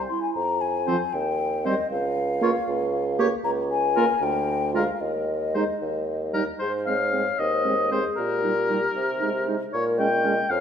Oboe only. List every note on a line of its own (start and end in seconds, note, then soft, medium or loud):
0.87 0.97 C5 soft
1.66 1.75 C5 soft
2.43 2.51 C#5 medium
3.19 3.28 C#5 medium
3.96 4.05 A#4 soft
4.75 4.84 A#4 soft
5.54 5.64 C5 soft
6.34 6.43 A#4 soft
6.59 6.71 C5 soft
6.86 7.40 F5 medium
7.39 7.91 D#5 soft
7.92 8.03 C5 soft
8.16 9.44 A#4 medium
9.73 9.84 C#5 medium
10.00 10.52 G5 medium
10.50 10.60 F5 medium